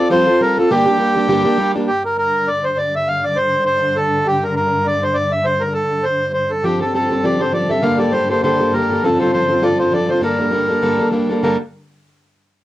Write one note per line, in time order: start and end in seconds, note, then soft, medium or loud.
0.10 0.26 F3 medium
0.10 0.27 G3 medium
0.10 0.27 C4 medium
0.10 0.26 F4 medium
0.10 0.25 A4 medium
0.10 0.41 C5 loud
0.26 0.40 C4 soft
0.26 0.40 F4 medium
0.26 0.40 A4 medium
0.41 0.57 G3 medium
0.41 0.57 C4 medium
0.41 0.58 F4 medium
0.41 0.56 A4 medium
0.41 0.58 A#4 loud
0.57 0.70 C4 soft
0.57 0.71 F4 medium
0.57 0.70 A4 soft
0.57 0.71 A4 medium
0.70 0.86 G2 medium
0.70 0.87 D3 medium
0.70 0.87 G3 medium
0.70 0.87 A#3 medium
0.70 0.86 D4 medium
0.70 1.72 G4 loud
0.70 0.85 G4 medium
0.86 0.97 G3 soft
0.86 0.98 A#3 soft
0.86 0.98 D4 medium
0.86 0.99 G4 medium
0.98 1.15 G3 medium
0.98 1.16 A#3 medium
0.98 1.15 D4 medium
0.98 1.14 G4 medium
1.15 1.27 G3 soft
1.15 1.28 A#3 soft
1.15 1.28 D4 medium
1.15 1.28 G4 medium
1.28 1.45 G2 medium
1.28 1.45 D3 medium
1.28 1.45 G3 medium
1.28 1.44 A#3 medium
1.28 1.44 D4 medium
1.28 1.43 G4 loud
1.44 1.57 G3 medium
1.44 1.58 A#3 medium
1.44 1.58 D4 medium
1.44 1.58 G4 medium
1.58 1.75 G3 medium
1.58 1.75 A#3 medium
1.58 1.74 D4 medium
1.58 1.74 G4 medium
1.75 1.89 G3 soft
1.75 1.89 A#3 soft
1.75 1.88 D4 medium
1.75 1.88 G4 medium
1.87 6.64 G2 medium
1.87 6.63 D3 medium
1.87 2.03 G4 loud
2.06 2.17 A#4 medium
2.18 2.49 A#4 loud
2.48 2.65 D5 loud
2.64 2.78 C5 medium
2.78 2.95 D5 loud
2.96 3.08 E5 medium
3.08 3.25 F5 loud
3.24 3.38 D5 medium
3.36 3.64 C5 loud
3.66 3.97 C5 loud
3.96 4.27 A4 loud
4.27 4.44 G4 loud
4.43 4.54 A#4 medium
4.56 4.87 A#4 medium
4.87 5.04 D5 loud
5.03 5.16 C5 medium
5.14 5.32 D5 medium
5.32 5.46 E5 medium
5.45 5.62 C5 loud
5.60 5.73 A#4 medium
5.74 6.05 A4 medium
6.04 6.32 C5 loud
6.34 6.51 C5 medium
6.51 6.65 A4 medium
6.64 11.45 G2 medium
6.64 11.45 D3 medium
6.64 6.81 F3 medium
6.64 6.82 C4 medium
6.64 6.80 G4 loud
6.64 6.81 G4 medium
6.64 6.79 A4 medium
6.81 6.93 C4 soft
6.81 6.94 G4 soft
6.81 6.94 A4 medium
6.81 6.93 A4 medium
6.94 7.11 F3 medium
6.94 7.11 C4 medium
6.94 7.10 G4 medium
6.94 7.25 A4 medium
6.94 7.09 A4 medium
7.10 7.24 C4 soft
7.10 7.24 G4 soft
7.10 7.24 A4 soft
7.24 7.41 F3 medium
7.24 7.40 C4 medium
7.24 7.39 G4 medium
7.24 7.38 A4 medium
7.24 7.41 D5 loud
7.39 7.52 C4 soft
7.39 7.53 G4 soft
7.39 7.53 A4 medium
7.39 7.53 C5 medium
7.52 7.70 F3 medium
7.52 7.70 C4 medium
7.52 7.70 G4 medium
7.52 7.68 A4 medium
7.52 7.71 D5 medium
7.70 7.83 C4 soft
7.70 7.82 G4 soft
7.70 7.83 A4 soft
7.70 7.84 E5 medium
7.82 7.99 G2 medium
7.82 8.00 D3 medium
7.82 7.99 G3 medium
7.82 7.99 A#3 medium
7.82 7.98 G4 medium
7.82 7.97 A4 medium
7.82 7.99 F5 medium
7.98 8.11 G3 soft
7.98 8.12 A#3 soft
7.98 8.13 G4 medium
7.98 8.13 A4 medium
7.98 8.13 D5 medium
8.12 8.30 G3 medium
8.12 8.30 A#3 soft
8.12 8.29 G4 medium
8.12 8.28 A4 medium
8.12 8.29 C5 medium
8.29 8.43 G3 soft
8.29 8.43 A#3 soft
8.29 8.44 G4 soft
8.29 8.43 A4 soft
8.29 8.42 C5 medium
8.43 8.60 G2 medium
8.43 8.60 D3 medium
8.43 8.60 G3 medium
8.43 8.60 A#3 medium
8.43 8.59 G4 medium
8.43 8.58 A4 medium
8.43 8.74 C5 medium
8.60 8.71 G3 soft
8.60 8.72 A#3 soft
8.60 8.73 G4 medium
8.60 8.73 A4 medium
8.73 8.90 G3 medium
8.73 8.90 A#3 medium
8.73 8.90 G4 medium
8.73 8.89 A4 medium
8.73 9.04 A#4 medium
8.90 9.03 G3 soft
8.90 9.04 A#3 soft
8.90 9.04 G4 soft
8.90 9.03 A4 medium
9.04 9.20 F3 medium
9.04 9.20 C4 medium
9.04 9.20 F4 medium
9.04 9.19 A4 medium
9.04 9.18 A4 medium
9.20 9.32 C4 soft
9.20 9.33 F4 soft
9.20 9.33 A4 medium
9.20 9.31 C5 medium
9.33 9.49 F3 medium
9.33 9.50 C4 medium
9.33 9.49 F4 medium
9.33 9.48 A4 medium
9.33 9.64 C5 loud
9.49 9.61 C4 soft
9.49 9.61 F4 soft
9.49 9.62 A4 soft
9.61 9.79 F3 medium
9.61 9.79 C4 medium
9.61 9.79 F4 medium
9.61 9.78 A4 medium
9.61 9.79 D5 medium
9.79 9.92 C4 soft
9.79 9.92 F4 medium
9.79 9.93 A4 soft
9.79 9.93 C5 medium
9.91 10.09 F3 medium
9.91 10.09 C4 medium
9.91 10.09 F4 medium
9.91 10.07 A4 medium
9.91 10.10 D5 loud
10.09 10.22 C4 soft
10.09 10.22 F4 soft
10.09 10.22 A4 soft
10.09 10.22 C5 medium
10.21 10.38 G2 medium
10.21 10.39 D3 medium
10.21 10.39 G3 medium
10.21 10.39 A#3 medium
10.21 10.38 D4 medium
10.21 10.37 A4 medium
10.21 11.09 A#4 medium
10.38 10.49 G3 soft
10.38 10.50 A#3 soft
10.38 10.51 D4 medium
10.38 10.52 A4 soft
10.51 10.68 G3 medium
10.51 10.69 A#3 soft
10.51 10.68 D4 medium
10.51 10.67 A4 medium
10.68 10.81 G3 soft
10.68 10.82 A#3 soft
10.68 10.82 D4 soft
10.68 10.82 A4 soft
10.82 10.99 G2 medium
10.82 10.99 D3 medium
10.82 10.99 G3 medium
10.82 10.99 A#3 medium
10.82 10.98 D4 medium
10.82 10.98 A4 medium
10.99 11.10 G3 soft
10.99 11.11 A#3 soft
10.99 11.12 D4 medium
10.99 11.12 A4 medium
11.12 11.28 G3 medium
11.12 11.29 A#3 medium
11.12 11.28 D4 medium
11.12 11.28 A4 medium
11.29 11.42 G3 soft
11.29 11.43 A#3 soft
11.29 11.42 D4 soft
11.29 11.42 A4 medium
11.43 11.55 G2 medium
11.43 11.56 D3 medium
11.43 11.56 G3 medium
11.43 11.56 A#3 medium
11.43 11.56 D4 medium
11.43 11.57 A4 medium
11.43 11.58 A#4 medium